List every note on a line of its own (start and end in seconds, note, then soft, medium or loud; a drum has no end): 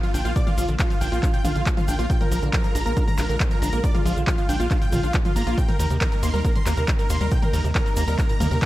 0.00 5.54 D3 medium
0.00 5.54 F3 medium
0.00 0.07 F3 loud
0.00 2.06 A#3 medium
0.00 5.54 F4 medium
0.00 0.11 F4 medium
0.00 0.11 F5 medium
0.00 closed hi-hat soft
0.00 shaker soft
0.14 0.23 A#1 medium
0.14 0.21 D4 loud
0.14 0.22 G5 medium
0.14 0.22 G6 medium
0.14 open hi-hat medium
0.14 shaker medium
0.25 0.34 A#1 medium
0.25 0.32 A#3 medium
0.25 0.33 F4 medium
0.25 0.33 F5 medium
0.25 closed hi-hat soft
0.25 shaker soft
0.36 0.43 A#2 loud
0.36 0.44 D5 loud
0.36 0.44 D6 loud
0.36 kick loud
0.36 closed hi-hat medium
0.36 shaker medium
0.47 0.51 A#2 medium
0.47 0.55 F4 medium
0.47 0.55 F5 medium
0.47 closed hi-hat soft
0.47 mid tom medium
0.47 shaker soft
0.58 0.67 A#1 medium
0.58 0.64 F3 medium
0.58 0.65 F4 medium
0.58 0.65 F5 medium
0.58 open hi-hat loud
0.58 shaker loud
0.68 0.77 A#1 medium
0.68 0.75 D3 medium
0.68 closed hi-hat soft
0.68 shaker soft
0.79 0.90 F3 medium
0.79 0.87 F4 medium
0.79 0.87 F5 medium
0.79 kick loud
0.79 clap loud
0.79 closed hi-hat medium
0.79 shaker medium
0.90 0.94 F3 medium
0.90 0.98 F4 medium
0.90 0.98 F5 medium
0.90 closed hi-hat soft
0.90 shaker soft
1.01 1.10 A#1 medium
1.01 1.08 D4 loud
1.01 1.09 G5 loud
1.01 1.09 G6 medium
1.01 open hi-hat medium
1.01 shaker medium
1.12 1.21 A#1 medium
1.12 1.19 A#3 medium
1.12 1.20 F4 medium
1.12 1.20 F5 medium
1.12 closed hi-hat soft
1.12 shaker soft
1.23 1.30 D4 medium
1.23 1.31 F4 medium
1.23 1.31 F5 medium
1.23 kick loud
1.23 clap medium
1.23 closed hi-hat medium
1.23 shaker medium
1.33 1.38 A#2 medium
1.33 1.41 G5 medium
1.33 1.41 G6 loud
1.33 closed hi-hat soft
1.33 shaker soft
1.45 1.54 A#1 loud
1.45 1.51 D4 loud
1.45 1.52 F4 medium
1.45 1.52 F5 medium
1.45 open hi-hat loud
1.45 mid tom medium
1.45 shaker loud
1.55 1.64 A#1 medium
1.55 1.62 D3 medium
1.55 1.63 F4 medium
1.55 1.63 F5 medium
1.55 closed hi-hat soft
1.55 shaker soft
1.66 1.77 F3 medium
1.66 kick loud
1.66 clap loud
1.66 closed hi-hat medium
1.66 shaker medium
1.77 1.81 F3 loud
1.77 1.85 F4 medium
1.77 1.85 F5 medium
1.77 closed hi-hat soft
1.77 mid tom medium
1.77 shaker soft
1.88 1.97 A#1 medium
1.88 1.95 D4 loud
1.88 1.96 G5 medium
1.88 1.96 G6 medium
1.88 open hi-hat loud
1.88 shaker medium
1.99 2.08 A#1 medium
1.99 2.06 A#3 medium
1.99 2.07 F4 medium
1.99 2.07 F5 medium
1.99 closed hi-hat soft
1.99 shaker soft
2.10 2.17 A#2 loud
2.10 5.54 G#3 medium
2.10 2.17 G5 loud
2.10 2.18 G6 loud
2.10 kick loud
2.10 closed hi-hat medium
2.10 shaker medium
2.21 2.25 A#2 medium
2.21 2.28 A#4 medium
2.21 2.29 A#5 medium
2.21 closed hi-hat soft
2.21 mid tom medium
2.21 shaker soft
2.31 2.40 A#1 medium
2.31 2.38 F3 medium
2.31 2.39 A#4 medium
2.31 2.39 A#5 medium
2.31 open hi-hat loud
2.31 shaker medium
2.42 2.51 A#1 medium
2.42 2.49 D3 medium
2.42 closed hi-hat soft
2.42 shaker soft
2.53 2.63 F3 medium
2.53 2.61 A#4 medium
2.53 2.61 A#5 medium
2.53 kick loud
2.53 clap loud
2.53 closed hi-hat medium
2.53 shaker medium
2.64 2.68 F3 medium
2.64 2.72 A#4 medium
2.64 2.72 A#5 medium
2.64 closed hi-hat soft
2.64 shaker soft
2.75 2.84 A#1 loud
2.75 2.82 D4 loud
2.75 2.83 A#5 loud
2.75 2.83 A#6 loud
2.75 open hi-hat loud
2.75 shaker medium
2.86 2.95 A#1 medium
2.86 2.93 A#3 medium
2.86 2.94 A#4 medium
2.86 2.94 A#5 medium
2.86 shaker soft
2.97 3.04 D4 medium
2.97 3.04 A#4 medium
2.97 3.04 A#5 medium
2.97 kick loud
2.97 closed hi-hat medium
2.97 shaker medium
3.07 3.12 A#2 medium
3.07 3.15 A#5 loud
3.07 3.15 A#6 medium
3.07 closed hi-hat soft
3.07 mid tom medium
3.07 shaker soft
3.18 3.27 A#1 medium
3.18 3.25 D4 loud
3.18 3.26 A#4 medium
3.18 3.26 A#5 medium
3.18 clap medium
3.18 open hi-hat loud
3.18 shaker loud
3.29 3.38 A#1 medium
3.29 3.36 D3 medium
3.29 3.37 A#4 medium
3.29 3.37 A#5 medium
3.29 closed hi-hat soft
3.29 shaker soft
3.40 3.50 F3 medium
3.40 kick loud
3.40 clap loud
3.40 closed hi-hat medium
3.40 shaker medium
3.51 3.55 F3 loud
3.51 3.59 A#4 medium
3.51 3.59 A#5 medium
3.51 closed hi-hat soft
3.51 shaker soft
3.62 3.71 A#1 loud
3.62 3.69 D4 loud
3.62 3.70 A#5 medium
3.62 3.70 A#6 medium
3.62 open hi-hat loud
3.62 shaker loud
3.72 3.82 A#1 medium
3.72 3.80 A#3 medium
3.72 3.81 A#4 medium
3.72 3.81 A#5 medium
3.72 closed hi-hat soft
3.72 shaker soft
3.83 3.91 A#2 loud
3.83 3.91 D5 loud
3.83 3.91 D6 loud
3.83 kick loud
3.83 closed hi-hat medium
3.83 shaker medium
3.94 3.99 A#2 medium
3.94 4.02 F4 medium
3.94 4.02 F5 medium
3.94 closed hi-hat soft
3.94 mid tom medium
3.94 shaker soft
4.05 4.14 A#1 medium
4.05 4.12 F3 medium
4.05 4.13 F4 medium
4.05 4.13 F5 medium
4.05 open hi-hat loud
4.05 shaker loud
4.16 4.25 A#1 medium
4.16 4.23 D3 medium
4.16 closed hi-hat soft
4.16 shaker soft
4.27 4.37 F3 medium
4.27 4.35 F4 medium
4.27 4.35 F5 medium
4.27 kick loud
4.27 clap loud
4.27 closed hi-hat medium
4.27 shaker medium
4.38 4.42 F3 medium
4.38 4.46 F4 medium
4.38 4.46 F5 medium
4.38 closed hi-hat soft
4.38 shaker soft
4.49 4.58 A#1 medium
4.49 4.56 D4 loud
4.49 4.57 G5 loud
4.49 4.57 G6 medium
4.49 open hi-hat loud
4.49 shaker loud
4.60 4.69 A#1 medium
4.60 4.67 A#3 medium
4.60 4.67 F4 medium
4.60 4.68 F5 medium
4.60 closed hi-hat soft
4.60 shaker soft
4.71 4.77 D4 medium
4.71 4.78 F4 medium
4.71 4.78 F5 medium
4.71 kick loud
4.71 clap medium
4.71 closed hi-hat medium
4.71 shaker soft
4.81 4.86 A#2 medium
4.81 4.89 G5 medium
4.81 4.89 G6 medium
4.81 closed hi-hat soft
4.81 shaker soft
4.92 5.01 A#1 medium
4.92 4.99 A#2 loud
4.92 5.00 F4 medium
4.92 5.00 F5 medium
4.92 open hi-hat loud
4.92 mid tom medium
4.92 shaker loud
5.03 5.12 A#1 medium
5.03 5.07 D4 loud
5.03 5.11 F4 medium
5.03 5.11 F5 medium
5.03 closed hi-hat soft
5.03 shaker soft
5.13 5.18 F3 medium
5.13 kick loud
5.13 clap loud
5.13 closed hi-hat medium
5.13 shaker medium
5.25 5.32 F3 medium
5.25 5.33 F4 medium
5.25 5.33 F5 medium
5.25 closed hi-hat soft
5.25 mid tom medium
5.25 shaker soft
5.36 5.45 G#1 medium
5.36 5.43 A#3 loud
5.36 5.44 A#5 medium
5.36 5.44 A#6 medium
5.36 open hi-hat loud
5.36 shaker loud
5.47 5.56 A#1 medium
5.47 5.57 A#3 loud
5.47 5.54 F4 medium
5.47 5.55 F5 medium
5.47 closed hi-hat soft
5.47 shaker soft
5.58 5.64 A#2 loud
5.58 8.66 C3 medium
5.58 8.66 G3 medium
5.58 8.66 A#3 medium
5.58 8.66 D#4 medium
5.58 5.65 G5 loud
5.58 5.65 G6 loud
5.58 kick loud
5.58 closed hi-hat medium
5.58 shaker medium
5.68 5.73 A#2 medium
5.68 5.76 A#4 medium
5.68 5.76 A#5 medium
5.68 closed hi-hat soft
5.68 mid tom medium
5.68 shaker soft
5.79 5.88 D#2 medium
5.79 5.86 D#3 medium
5.79 5.87 A#4 medium
5.79 5.87 A#5 medium
5.79 open hi-hat loud
5.79 ride medium
5.79 shaker loud
5.90 5.99 D#2 medium
5.90 5.97 C3 medium
5.90 closed hi-hat soft
5.90 shaker soft
6.01 6.09 A#4 medium
6.01 6.09 A#5 medium
6.01 kick loud
6.01 clap loud
6.01 closed hi-hat medium
6.01 shaker soft
6.12 6.16 D#3 medium
6.12 6.20 A#4 medium
6.12 6.20 A#5 medium
6.12 closed hi-hat soft
6.12 shaker soft
6.23 6.32 D#2 loud
6.23 6.30 A#3 loud
6.23 6.31 C6 loud
6.23 6.31 C7 medium
6.23 open hi-hat loud
6.23 ride medium
6.23 shaker medium
6.34 6.43 D#2 medium
6.34 6.41 G3 medium
6.34 6.41 A#4 medium
6.34 6.42 A#5 medium
6.34 closed hi-hat soft
6.34 shaker soft
6.45 6.51 A#3 medium
6.45 6.52 A#4 medium
6.45 6.52 A#5 medium
6.45 kick loud
6.45 closed hi-hat medium
6.45 shaker soft
6.55 6.60 A#2 medium
6.55 6.63 C6 medium
6.55 6.63 C7 loud
6.55 closed hi-hat soft
6.55 mid tom medium
6.55 shaker soft
6.66 6.75 D#2 medium
6.66 6.73 A#3 loud
6.66 6.74 A#4 medium
6.66 6.74 A#5 medium
6.66 clap medium
6.66 open hi-hat loud
6.66 ride medium
6.66 shaker loud
6.77 6.86 D#2 medium
6.77 6.84 C3 medium
6.77 6.85 A#4 medium
6.77 6.85 A#5 medium
6.77 closed hi-hat soft
6.77 shaker soft
6.88 6.98 D#3 medium
6.88 kick loud
6.88 clap loud
6.88 closed hi-hat medium
6.88 shaker medium
6.99 7.03 D#3 loud
6.99 7.07 A#4 medium
6.99 7.07 A#5 medium
6.99 closed hi-hat soft
6.99 shaker soft
7.10 7.19 D#2 loud
7.10 7.17 A#3 loud
7.10 7.18 C6 medium
7.10 7.18 C7 medium
7.10 open hi-hat medium
7.10 ride medium
7.10 shaker loud
7.21 7.30 D#2 medium
7.21 7.27 G3 medium
7.21 7.28 A#4 medium
7.21 7.28 A#5 medium
7.21 closed hi-hat soft
7.21 shaker soft
7.31 7.38 A#2 loud
7.31 7.39 G5 loud
7.31 7.39 G6 loud
7.31 kick loud
7.31 closed hi-hat medium
7.31 shaker soft
7.42 7.47 A#2 medium
7.42 7.50 A#4 medium
7.42 7.50 A#5 medium
7.42 closed hi-hat soft
7.42 mid tom medium
7.42 shaker soft
7.53 7.62 D#2 medium
7.53 7.60 D#3 medium
7.53 7.61 A#4 medium
7.53 7.61 A#5 medium
7.53 open hi-hat loud
7.53 ride medium
7.53 shaker medium
7.64 7.73 D#2 medium
7.64 7.71 C3 medium
7.64 closed hi-hat soft
7.64 shaker soft
7.75 7.85 D#3 medium
7.75 7.83 A#4 medium
7.75 7.83 A#5 medium
7.75 kick loud
7.75 clap loud
7.75 closed hi-hat medium
7.75 shaker soft
7.86 7.90 D#3 medium
7.86 7.94 A#4 medium
7.86 7.94 A#5 medium
7.86 closed hi-hat soft
7.86 shaker soft
7.96 8.06 D#2 loud
7.96 8.04 A#3 loud
7.96 8.04 A#5 loud
7.96 8.04 A#6 loud
7.96 open hi-hat medium
7.96 ride medium
7.96 shaker medium
8.07 8.17 D#2 medium
8.07 8.14 G3 medium
8.07 8.15 A#4 medium
8.07 8.15 A#5 medium
8.07 closed hi-hat soft
8.07 shaker soft
8.18 8.25 A#3 medium
8.18 8.26 A#4 medium
8.18 8.26 A#5 medium
8.18 kick loud
8.18 clap medium
8.18 closed hi-hat medium
8.18 shaker medium
8.29 8.33 A#2 medium
8.29 8.37 A#5 medium
8.29 8.37 A#6 loud
8.29 closed hi-hat soft
8.29 shaker soft
8.40 8.49 D#2 loud
8.40 8.47 A#3 loud
8.40 8.48 A#4 medium
8.40 8.48 A#5 medium
8.40 open hi-hat loud
8.40 mid tom medium
8.40 ride medium
8.40 shaker medium
8.51 8.60 D#2 medium
8.51 8.58 C3 medium
8.51 8.59 A#4 medium
8.51 8.59 A#5 medium
8.51 closed hi-hat soft
8.51 shaker soft
8.62 8.66 D#3 medium
8.62 kick loud
8.62 clap loud
8.62 closed hi-hat medium
8.62 shaker medium